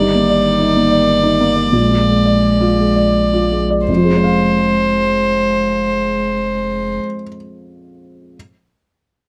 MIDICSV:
0, 0, Header, 1, 5, 480
1, 0, Start_track
1, 0, Tempo, 619835
1, 832, Tempo, 674916
1, 1303, Time_signature, 3, 2, 24, 8
1, 1792, Tempo, 738916
1, 6249, End_track
2, 0, Start_track
2, 0, Title_t, "Violin"
2, 0, Program_c, 0, 40
2, 0, Note_on_c, 0, 74, 57
2, 2550, Note_off_c, 0, 74, 0
2, 2730, Note_on_c, 0, 72, 47
2, 4748, Note_off_c, 0, 72, 0
2, 6249, End_track
3, 0, Start_track
3, 0, Title_t, "Upright piano"
3, 0, Program_c, 1, 0
3, 0, Note_on_c, 1, 43, 51
3, 0, Note_on_c, 1, 63, 38
3, 38, Control_c, 1, 64, 127
3, 114, Note_on_c, 1, 58, 38
3, 183, Note_off_c, 1, 63, 0
3, 233, Note_on_c, 1, 74, 42
3, 301, Note_off_c, 1, 58, 0
3, 461, Note_on_c, 1, 63, 41
3, 588, Note_on_c, 1, 58, 40
3, 614, Note_off_c, 1, 74, 0
3, 657, Note_off_c, 1, 63, 0
3, 707, Note_on_c, 1, 74, 34
3, 783, Note_off_c, 1, 58, 0
3, 946, Note_on_c, 1, 63, 37
3, 1066, Note_on_c, 1, 58, 38
3, 1087, Note_off_c, 1, 74, 0
3, 1134, Note_off_c, 1, 63, 0
3, 1179, Note_on_c, 1, 74, 37
3, 1256, Note_off_c, 1, 58, 0
3, 1275, Note_off_c, 1, 43, 0
3, 1294, Note_on_c, 1, 46, 42
3, 1301, Note_off_c, 1, 74, 0
3, 1317, Control_c, 1, 64, 0
3, 1426, Note_on_c, 1, 65, 33
3, 1435, Control_c, 1, 64, 127
3, 1556, Note_on_c, 1, 56, 34
3, 1620, Note_off_c, 1, 65, 0
3, 1674, Note_on_c, 1, 74, 35
3, 1748, Note_off_c, 1, 56, 0
3, 1912, Note_on_c, 1, 65, 35
3, 2034, Note_on_c, 1, 56, 31
3, 2049, Note_off_c, 1, 74, 0
3, 2096, Note_off_c, 1, 65, 0
3, 2141, Note_on_c, 1, 74, 33
3, 2217, Note_off_c, 1, 56, 0
3, 2384, Note_on_c, 1, 65, 32
3, 2501, Note_on_c, 1, 56, 30
3, 2525, Note_off_c, 1, 74, 0
3, 2575, Note_off_c, 1, 65, 0
3, 2624, Note_on_c, 1, 74, 34
3, 2694, Note_off_c, 1, 56, 0
3, 2711, Note_off_c, 1, 46, 0
3, 2743, Note_off_c, 1, 74, 0
3, 2746, Note_on_c, 1, 41, 34
3, 2756, Control_c, 1, 64, 0
3, 2789, Note_on_c, 1, 53, 35
3, 2837, Note_on_c, 1, 56, 34
3, 2866, Control_c, 1, 64, 127
3, 2880, Note_on_c, 1, 65, 33
3, 2924, Note_on_c, 1, 72, 35
3, 2971, Note_on_c, 1, 77, 36
3, 4764, Note_off_c, 1, 41, 0
3, 4807, Note_off_c, 1, 53, 0
3, 4856, Note_off_c, 1, 56, 0
3, 4898, Note_off_c, 1, 65, 0
3, 4942, Note_off_c, 1, 72, 0
3, 4989, Note_off_c, 1, 77, 0
3, 5649, Control_c, 1, 64, 0
3, 6249, End_track
4, 0, Start_track
4, 0, Title_t, "Cello"
4, 0, Program_c, 2, 42
4, 0, Note_on_c, 2, 51, 49
4, 1288, Note_off_c, 2, 51, 0
4, 1292, Note_on_c, 2, 56, 45
4, 2549, Note_off_c, 2, 56, 0
4, 2739, Note_on_c, 2, 56, 39
4, 4757, Note_off_c, 2, 56, 0
4, 6249, End_track
5, 0, Start_track
5, 0, Title_t, "Sub bass"
5, 0, Program_c, 3, 38
5, 0, Note_on_c, 3, 31, 55
5, 1302, Note_on_c, 3, 34, 60
5, 1313, Note_off_c, 3, 31, 0
5, 2736, Note_off_c, 3, 34, 0
5, 2740, Note_on_c, 3, 29, 55
5, 4759, Note_off_c, 3, 29, 0
5, 6249, End_track
0, 0, End_of_file